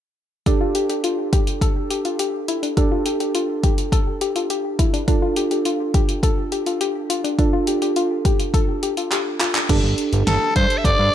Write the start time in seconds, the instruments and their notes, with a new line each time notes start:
0.46 synth pluck D4, synth keys D4 G4 A4, kick, closed hi-hat
0.61 synth pluck F4
0.75 synth pluck G4, closed hi-hat
0.90 synth pluck G4, closed hi-hat
1.04 synth pluck F4, closed hi-hat
1.33 synth pluck G4, kick, closed hi-hat
1.47 closed hi-hat
1.61 synth pluck A4, kick, closed hi-hat
1.90 synth pluck G4, closed hi-hat
2.05 synth pluck F4, closed hi-hat
2.19 synth pluck G4, closed hi-hat
2.48 synth pluck E4, closed hi-hat
2.63 synth pluck D4, closed hi-hat
2.77 synth keys D4 G4 A4, synth pluck D4, kick, closed hi-hat
2.92 synth pluck F4
3.06 synth pluck G4, closed hi-hat
3.20 synth pluck G4, closed hi-hat
3.35 synth pluck F4, closed hi-hat
3.63 synth pluck G4, kick, closed hi-hat
3.78 closed hi-hat
3.92 synth pluck A4, kick, closed hi-hat
4.21 synth pluck G4, closed hi-hat
4.36 synth pluck F4, closed hi-hat
4.50 synth pluck G4, closed hi-hat
4.79 synth pluck E4, kick, closed hi-hat
4.93 synth pluck D4, closed hi-hat
5.08 synth keys D4 F4 A4, synth pluck D4, kick, closed hi-hat
5.22 synth pluck F4
5.36 synth pluck G4, closed hi-hat
5.51 synth pluck G4, closed hi-hat
5.65 synth pluck F4, closed hi-hat
5.94 synth pluck G4, kick, closed hi-hat
6.09 closed hi-hat
6.23 synth pluck A4, kick, closed hi-hat
6.52 synth pluck G4, closed hi-hat
6.66 synth pluck F4, closed hi-hat
6.81 synth pluck G4, closed hi-hat
7.10 synth pluck F4, closed hi-hat
7.24 synth pluck D4, closed hi-hat
7.39 synth pluck D4, synth keys D4 F4 A4, kick, closed hi-hat
7.53 synth pluck F4
7.67 synth pluck G4, closed hi-hat
7.82 synth pluck G4, closed hi-hat
7.96 synth pluck F4, closed hi-hat
8.25 synth pluck G4, kick, closed hi-hat
8.40 closed hi-hat
8.54 synth pluck A4, kick, closed hi-hat
8.83 synth pluck G4, closed hi-hat
8.97 synth pluck F4, closed hi-hat
9.12 synth pluck G4, clap, closed hi-hat
9.41 synth pluck F4, clap, closed hi-hat
9.55 synth pluck D4, clap, closed hi-hat
9.69 analog synth bass G1, synth keys D4 G4 A4, kick, closed hi-hat, crash
9.84 analog synth bass G1
9.98 closed hi-hat
10.13 analog synth bass G1, closed hi-hat
10.27 analog synth bass G1, soprano saxophone A4, snare, closed hi-hat
10.56 analog synth bass G2, soprano saxophone C5, kick, closed hi-hat
10.70 closed hi-hat
10.78 soprano saxophone E5
10.85 analog synth bass G1, soprano saxophone D5, kick, closed hi-hat
10.99 analog synth bass G2